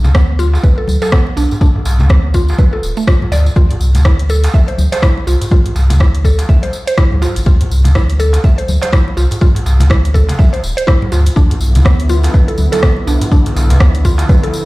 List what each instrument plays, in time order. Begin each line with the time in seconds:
0.04 sub bass D2, tambourine, muted conga, darbuka tek, low conga
0.15 synth pluck B3, kick, cross-stick, tambourine
0.39 synth pluck F4, tambourine, muted conga
0.54 tambourine, darbuka tek
0.63 synth pluck B4, kick, tambourine
0.78 synth pluck A4, muted conga
0.88 sub bass D2, tambourine, high conga
1.02 synth pluck A4, tambourine, darbuka ka, high conga, darbuka tek
1.12 synth pluck B3, kick, cross-stick, tambourine
1.27 muted conga
1.37 sub bass B1, synth pluck D4, tambourine, darbuka ka
1.51 tambourine, darbuka dum
1.61 synth pluck D4, kick, tambourine, muted conga
1.75 darbuka dum
1.85 sub bass B1, tambourine, darbuka ka
1.99 sub bass D2, tambourine, muted conga, darbuka tek, low conga
2.09 synth pluck B3, kick, cross-stick, tambourine
2.34 synth pluck F4, kick, tambourine, muted conga
2.48 tambourine, darbuka tek
2.58 synth pluck B4, kick, tambourine, high conga
2.73 synth pluck A4, darbuka ka, muted conga
2.83 sub bass D1, tambourine
2.97 synth pluck A3, tambourine
3.07 synth pluck F4, kick, cross-stick, tambourine
3.22 muted conga, high conga, darbuka dum
3.31 sub bass D2, synth pluck D5, tambourine, high conga, darbuka tek
3.46 tambourine
3.56 sub bass D2, synth pluck F4, kick, tambourine, muted conga
3.71 closed hi-hat, darbuka dum
3.80 sub bass C2, tambourine
3.95 sub bass D2, closed hi-hat, tambourine, muted conga, darbuka tek, low conga
4.05 synth pluck E4, kick, cross-stick, tambourine
4.19 closed hi-hat
4.29 synth pluck A4, tambourine, muted conga
4.44 closed hi-hat, tambourine, darbuka tek
4.54 synth pluck E5, kick
4.68 synth pluck C5, closed hi-hat, muted conga
4.78 sub bass D2, tambourine, high conga
4.92 synth pluck C5, closed hi-hat, tambourine, darbuka ka, high conga, darbuka tek
5.02 synth pluck E4, kick, cross-stick, tambourine
5.17 muted conga
5.27 sub bass C2, synth pluck F4, tambourine, darbuka ka
5.42 closed hi-hat, tambourine, darbuka dum
5.51 synth pluck F4, kick, muted conga
5.65 closed hi-hat, darbuka dum
5.75 sub bass C2, tambourine, darbuka ka
5.90 sub bass D2, closed hi-hat, tambourine, muted conga, darbuka tek, low conga
6.00 synth pluck E4, kick, cross-stick
6.15 closed hi-hat
6.25 synth pluck A4, kick, tambourine, muted conga
6.39 closed hi-hat, tambourine, darbuka tek
6.49 synth pluck E5, kick, tambourine, high conga
6.63 synth pluck C5, closed hi-hat, muted conga, darbuka ka
6.73 tambourine
6.87 synth pluck C5, closed hi-hat, tambourine
6.98 synth pluck E4, kick, cross-stick, tambourine
7.11 sub bass D2, muted conga, high conga, darbuka dum
7.22 synth pluck F4, tambourine, darbuka tek
7.36 sub bass A1, closed hi-hat, tambourine
7.46 sub bass D2, synth pluck F4, kick, muted conga
7.61 closed hi-hat, darbuka dum
7.71 sub bass C2, tambourine
7.84 sub bass D2, closed hi-hat, tambourine, muted conga, darbuka tek, low conga
7.95 synth pluck E4, kick, cross-stick, tambourine
8.10 closed hi-hat
8.20 synth pluck A4, tambourine, muted conga
8.33 closed hi-hat, tambourine, darbuka tek
8.44 synth pluck E5, kick, tambourine
8.58 synth pluck C5, closed hi-hat, muted conga
8.68 sub bass D2, tambourine, high conga
8.82 synth pluck C5, closed hi-hat, tambourine, darbuka ka, darbuka tek, high conga
8.93 synth pluck E4, kick, cross-stick, tambourine
9.08 muted conga
9.17 sub bass C2, synth pluck F4, tambourine, darbuka ka
9.31 closed hi-hat, tambourine, darbuka dum
9.41 synth pluck F4, kick, tambourine, muted conga
9.55 closed hi-hat, darbuka dum
9.66 sub bass C2, tambourine, darbuka ka
9.80 sub bass D2, closed hi-hat, tambourine, muted conga, darbuka tek, low conga
9.90 synth pluck E4, kick, cross-stick, tambourine
10.05 closed hi-hat
10.14 synth pluck A4, kick, tambourine, muted conga, high conga
10.29 closed hi-hat, tambourine, darbuka tek, low conga
10.39 synth pluck E5, kick, tambourine, high conga
10.53 synth pluck C5, closed hi-hat, darbuka ka, muted conga
10.63 sub bass D1, tambourine
10.77 synth pluck C5, closed hi-hat, tambourine
10.87 synth pluck E4, kick, cross-stick, tambourine
11.02 muted conga, high conga, darbuka dum
11.12 sub bass D2, synth pluck F4, tambourine, darbuka tek
11.26 closed hi-hat, tambourine
11.36 sub bass D2, analog synth pad D3 F3 B3 E4, synth pluck D4, kick, tambourine, muted conga
11.50 closed hi-hat, darbuka dum
11.61 sub bass B1, tambourine
11.75 sub bass D2, closed hi-hat, tambourine, muted conga, darbuka tek, low conga
11.85 synth pluck B3, kick, cross-stick
12.00 closed hi-hat
12.09 synth pluck F4, tambourine, muted conga
12.23 closed hi-hat, tambourine, darbuka tek
12.34 synth pluck B4, kick, tambourine
12.48 synth pluck A4, closed hi-hat, muted conga
12.58 sub bass D2, tambourine, high conga
12.72 synth pluck A4, closed hi-hat, tambourine, darbuka ka, darbuka tek, high conga
12.83 synth pluck B3, kick, cross-stick, tambourine
12.97 muted conga
13.07 sub bass B1, synth pluck D4, tambourine, darbuka ka
13.21 closed hi-hat, tambourine, darbuka dum
13.32 synth pluck D4, kick, tambourine, muted conga
13.46 closed hi-hat, darbuka dum
13.56 sub bass B1, tambourine, darbuka ka
13.70 sub bass D2, closed hi-hat, tambourine, muted conga, darbuka tek, low conga
13.80 synth pluck B3, kick, cross-stick, tambourine
13.95 closed hi-hat
14.05 synth pluck F4, kick, tambourine, muted conga
14.18 closed hi-hat, tambourine, darbuka tek
14.29 synth pluck B4, kick, tambourine, high conga
14.43 synth pluck A4, closed hi-hat, darbuka ka, muted conga
14.53 tambourine